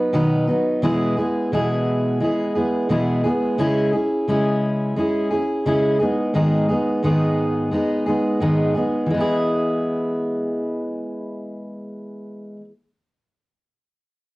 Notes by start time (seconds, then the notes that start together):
Already playing: F#3 B3 D#4 B4
0.13 B2 D#3 F#3 B3 D#4 B4
0.47 F#3 B3 D#4 B4
0.82 B2 E3 G#3 B3 E4 G#4
1.17 G#3 B3 E4 G#4
1.52 B2 E3 G#3 B3 E4 G#4
2.20 G#3 B3 E4 G#4
2.55 G#3 B3 E4 G#4
2.89 B2 E3 G#3 B3 E4 G#4
3.24 G#3 B3 E4 G#4
3.58 C#3 G#3 C#4 E4 G#4
3.93 C#4 E4 G#4
4.28 C#3 G#3 C#4 E4 G#4
4.96 G#3 C#4 E4 G#4
5.31 C#4 E4 G#4
5.66 C#3 G#3 C#4 E4 G#4
6.00 G#3 B3 D#4 G#4
6.34 G#2 D#3 G#3 B3 D#4 G#4
6.68 G#3 B3 D#4 G#4
7.03 G#2 D#3 G#3 B3 D#4 G#4
7.71 G#3 B3 D#4 G#4
8.06 G#3 B3 D#4 G#4
8.40 G#2 D#3 G#3 B3 D#4 G#4
8.75 G#3 B3 D#4 G#4
9.06 E3
9.11 G#3 B3
9.17 E4 G#4